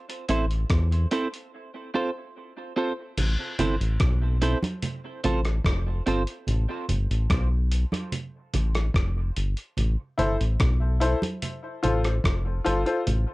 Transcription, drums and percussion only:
0.10 closed hi-hat
0.29 closed hi-hat
0.51 closed hi-hat
0.70 kick, cross-stick, closed hi-hat
0.92 closed hi-hat
1.11 closed hi-hat
1.34 closed hi-hat
3.18 closed hi-hat, crash, low conga
3.59 closed hi-hat, low conga
3.81 closed hi-hat
4.00 kick, cross-stick, closed hi-hat
4.42 closed hi-hat
4.62 closed hi-hat, high conga
4.82 closed hi-hat, low conga
5.24 closed hi-hat, low conga
5.45 cross-stick, closed hi-hat
5.65 kick, cross-stick, closed hi-hat
6.07 closed hi-hat
6.27 closed hi-hat
6.47 closed hi-hat, low conga
6.89 closed hi-hat, low conga
7.11 closed hi-hat
7.30 kick, cross-stick, closed hi-hat
7.72 closed hi-hat
7.92 closed hi-hat, high conga
8.12 closed hi-hat, low conga
8.54 closed hi-hat, low conga
8.75 cross-stick, closed hi-hat
8.94 kick, cross-stick, closed hi-hat
9.37 closed hi-hat
9.57 closed hi-hat
9.77 closed hi-hat, low conga
10.19 closed hi-hat, low conga
10.41 closed hi-hat
10.60 kick, cross-stick, closed hi-hat
11.01 closed hi-hat
11.22 closed hi-hat, high conga
11.42 closed hi-hat, low conga
11.83 closed hi-hat, low conga
12.04 cross-stick, closed hi-hat
12.24 kick, cross-stick, closed hi-hat
12.66 closed hi-hat
12.86 closed hi-hat
13.07 closed hi-hat, low conga

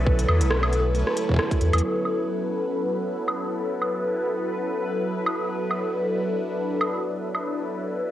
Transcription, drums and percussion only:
0.07 kick
0.19 closed hi-hat
0.29 high woodblock
0.41 closed hi-hat
0.51 cross-stick
0.63 high woodblock
0.73 closed hi-hat
0.95 closed hi-hat
1.07 cross-stick
1.17 closed hi-hat
1.29 kick
1.32 kick
1.34 kick
1.36 kick, cross-stick
1.51 kick, closed hi-hat
1.61 closed hi-hat
1.73 closed hi-hat, high woodblock
1.78 closed hi-hat
2.05 high woodblock
3.28 high woodblock
3.82 high woodblock
5.26 high woodblock
5.71 high woodblock
6.81 high woodblock
7.35 high woodblock

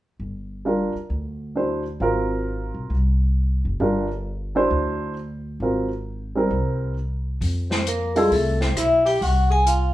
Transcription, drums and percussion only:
7.41 kick, open hi-hat
7.71 snare
7.87 closed hi-hat
8.16 open hi-hat
8.32 kick, open hi-hat
8.61 snare
8.77 cross-stick, closed hi-hat
9.06 open hi-hat
9.22 kick, open hi-hat
9.67 closed hi-hat

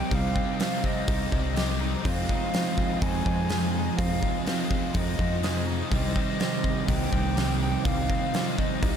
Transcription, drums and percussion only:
0.11 kick, open hi-hat
0.36 kick
0.60 snare, open hi-hat
0.84 kick
1.08 kick, open hi-hat
1.32 kick
1.56 snare, open hi-hat
2.05 kick, open hi-hat
2.29 kick
2.54 snare, open hi-hat
2.78 kick
3.02 kick, open hi-hat
3.26 kick
3.49 snare, open hi-hat
3.99 kick, open hi-hat
4.23 kick
4.47 snare, open hi-hat
4.71 kick
4.94 kick, open hi-hat
5.19 kick
5.43 snare, open hi-hat
5.91 kick, open hi-hat
6.16 kick
6.40 snare, open hi-hat
6.64 kick
6.88 kick, open hi-hat
7.13 kick
7.37 snare, open hi-hat
7.85 kick, open hi-hat
8.10 kick
8.34 snare, open hi-hat
8.58 kick
8.83 kick, open hi-hat

